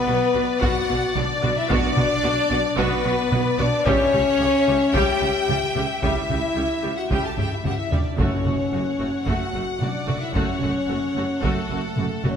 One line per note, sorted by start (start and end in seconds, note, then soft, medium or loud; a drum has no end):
0.00 0.62 B3 loud
0.00 0.61 B4 medium
0.00 3.82 D5 medium
0.07 0.16 B1 medium
0.07 0.17 B2 medium
0.07 0.15 B3 medium
0.07 0.15 F#4 medium
0.34 0.43 B1 medium
0.34 0.44 B2 medium
0.34 0.42 B3 medium
0.34 0.42 F#4 medium
0.61 0.71 B1 medium
0.61 0.71 B2 medium
0.61 0.86 B3 medium
0.61 0.86 F#4 medium
0.61 1.16 F#4 medium
0.61 1.15 F#5 medium
0.61 taiko medium
0.88 0.98 B1 medium
0.88 0.98 B2 medium
0.88 0.96 B3 medium
0.88 0.96 F#4 medium
1.15 1.24 B1 medium
1.15 1.25 B2 medium
1.15 1.24 B3 medium
1.15 1.56 D4 loud
1.15 1.24 F#4 medium
1.15 1.56 D5 medium
1.15 taiko mid medium
1.42 1.52 B1 medium
1.42 1.52 B2 medium
1.42 1.50 B3 medium
1.42 1.51 F#4 medium
1.42 taiko mid medium
1.57 1.71 E4 loud
1.57 1.70 E5 medium
1.69 1.78 B1 medium
1.69 1.79 B2 medium
1.69 1.94 B3 medium
1.69 2.76 D4 loud
1.69 1.95 F#4 medium
1.69 2.76 D5 loud
1.69 taiko loud
1.96 2.05 B1 medium
1.96 2.06 B2 medium
1.96 2.04 B3 medium
1.96 2.05 F#4 medium
1.96 taiko mid medium
2.23 2.31 B1 medium
2.23 2.33 B2 medium
2.23 2.32 B3 medium
2.23 2.32 F#4 medium
2.50 2.58 B1 medium
2.50 2.60 B2 medium
2.50 2.58 B3 medium
2.50 2.58 F#4 medium
2.77 2.85 B1 loud
2.77 2.86 B2 loud
2.77 3.03 B3 medium
2.77 3.59 B3 loud
2.77 3.02 F#4 medium
2.77 3.58 B4 loud
2.77 taiko medium
3.04 3.13 B1 medium
3.04 3.13 B2 medium
3.04 3.12 B3 medium
3.04 3.13 F#4 medium
3.32 3.40 B1 medium
3.32 3.41 B2 medium
3.32 3.40 B3 medium
3.32 3.40 F#4 medium
3.32 taiko mid medium
3.58 3.67 B1 medium
3.58 3.67 B2 medium
3.58 3.66 B3 medium
3.58 3.86 D4 loud
3.58 3.66 F#4 medium
3.58 3.86 D5 medium
3.58 taiko mid medium
3.85 3.93 C#2 medium
3.85 3.94 C#3 loud
3.85 4.11 G3 medium
3.85 4.94 C#4 loud
3.85 4.11 G4 medium
3.85 4.92 C#5 loud
3.85 7.95 E5 medium
3.85 taiko loud
4.13 4.21 C#2 medium
4.13 4.21 C#3 medium
4.13 4.21 G3 medium
4.13 4.21 G4 medium
4.13 taiko mid medium
4.39 4.47 C#2 medium
4.39 4.49 C#3 medium
4.39 4.48 G3 medium
4.39 4.48 G4 medium
4.67 4.75 C#2 medium
4.67 4.76 C#3 medium
4.67 4.75 G3 medium
4.67 4.75 G4 medium
4.94 5.02 C#2 medium
4.94 5.03 C#3 medium
4.94 5.19 G3 medium
4.94 5.19 G4 medium
4.94 5.85 G4 loud
4.94 6.03 G5 loud
4.94 taiko loud
5.21 5.29 C#2 medium
5.21 5.29 C#3 medium
5.21 5.30 G3 medium
5.21 5.29 G4 medium
5.48 5.56 C#2 medium
5.48 5.56 C#3 medium
5.48 5.57 G3 medium
5.48 5.57 G4 soft
5.48 taiko mid medium
5.76 5.84 C#2 medium
5.76 5.84 C#3 medium
5.76 5.84 G3 medium
5.76 5.84 G4 medium
5.76 taiko mid medium
6.02 6.11 C#2 medium
6.02 6.11 C#3 medium
6.02 6.28 G3 medium
6.02 6.95 E4 loud
6.02 6.27 G4 medium
6.02 6.95 E5 medium
6.02 taiko loud
6.29 6.38 C#2 medium
6.29 6.38 C#3 medium
6.29 6.37 G3 soft
6.29 6.38 G4 soft
6.29 taiko mid soft
6.55 6.64 C#2 soft
6.55 6.65 C#3 medium
6.55 6.63 G3 medium
6.55 6.63 G4 soft
6.82 6.91 C#2 soft
6.82 6.92 C#3 soft
6.82 6.90 G3 medium
6.82 6.90 G4 medium
6.97 7.11 F#4 medium
6.97 7.10 F#5 medium
7.10 7.18 C#2 medium
7.10 7.19 C#3 medium
7.10 7.35 G3 medium
7.10 7.35 G4 medium
7.10 7.24 G4 medium
7.10 7.24 G5 medium
7.10 taiko medium
7.24 7.37 A4 medium
7.24 7.37 A5 medium
7.37 7.45 C#2 soft
7.37 7.46 C#3 soft
7.37 7.46 G3 medium
7.37 7.51 G4 medium
7.37 7.46 G4 soft
7.37 7.51 G5 medium
7.37 taiko low-mid medium
7.51 7.65 E4 medium
7.51 7.65 E5 medium
7.64 7.72 C#2 soft
7.64 7.73 C#3 soft
7.64 7.73 G3 soft
7.64 7.78 F#4 medium
7.64 7.73 G4 soft
7.64 7.78 F#5 medium
7.64 taiko low-mid medium
7.78 7.91 E4 medium
7.78 7.92 E5 medium
7.90 7.98 C#2 soft
7.90 7.99 C#3 soft
7.90 8.00 G3 medium
7.90 8.18 D4 medium
7.90 8.00 G4 medium
7.90 8.20 D5 medium
7.90 taiko low medium
8.17 8.25 F#1 medium
8.17 8.95 F#2 medium
8.17 8.27 F#2 medium
8.17 8.43 A3 medium
8.17 9.26 C#4 medium
8.17 8.43 F#4 medium
8.17 9.25 C#5 medium
8.17 12.37 F#5 soft
8.17 taiko medium
8.45 8.53 F#1 medium
8.45 8.54 F#2 medium
8.45 8.54 A3 soft
8.45 8.53 F#4 soft
8.45 taiko mid soft
8.72 8.80 F#1 medium
8.72 8.81 F#2 soft
8.72 8.81 A3 soft
8.72 8.81 F#4 soft
8.99 9.08 F#1 soft
8.99 9.08 F#2 soft
8.99 9.08 A3 soft
8.99 9.07 F#4 soft
9.26 9.34 F#1 medium
9.26 9.35 F#2 medium
9.26 9.52 A3 medium
9.26 9.52 F#4 medium
9.26 9.81 F#4 medium
9.26 9.81 F#5 medium
9.26 taiko medium
9.54 9.62 F#1 soft
9.54 9.62 F#2 soft
9.54 9.63 A3 medium
9.54 9.63 F#4 soft
9.80 9.88 F#1 soft
9.80 9.89 F#2 soft
9.80 9.89 A3 soft
9.80 10.21 D4 medium
9.80 9.89 F#4 soft
9.80 10.22 D5 medium
9.80 taiko mid medium
10.07 10.15 F#1 soft
10.07 10.16 F#2 soft
10.07 10.15 A3 medium
10.07 10.15 F#4 medium
10.07 taiko mid soft
10.20 10.35 E4 medium
10.20 10.34 E5 medium
10.34 10.42 F#1 medium
10.34 10.43 F#2 medium
10.34 10.59 A3 medium
10.34 11.41 C#4 medium
10.34 10.60 F#4 medium
10.34 11.40 C#5 medium
10.34 taiko medium
10.60 10.68 F#1 medium
10.60 10.71 F#2 medium
10.60 10.70 A3 soft
10.60 10.70 F#4 medium
10.60 taiko mid soft
10.88 10.96 F#1 medium
10.88 10.97 F#2 medium
10.88 10.97 A3 medium
10.88 10.96 F#4 soft
11.15 11.23 F#1 soft
11.15 11.24 F#2 soft
11.15 11.24 A3 medium
11.15 11.25 F#4 medium
11.42 11.51 F#1 medium
11.42 11.51 F#2 medium
11.42 12.24 A3 medium
11.42 11.68 A3 medium
11.42 11.68 F#4 medium
11.42 12.23 A4 medium
11.42 taiko medium
11.70 11.78 F#1 medium
11.70 11.79 F#2 medium
11.70 11.78 A3 medium
11.70 11.78 F#4 medium
11.96 12.04 F#1 medium
11.96 12.06 F#2 medium
11.96 12.06 A3 soft
11.96 12.05 F#4 soft
11.96 taiko mid medium
12.24 12.32 F#1 medium
12.24 12.33 F#2 medium
12.24 12.32 A3 medium
12.24 12.37 C#4 medium
12.24 12.32 F#4 medium
12.24 12.37 C#5 medium
12.24 taiko mid soft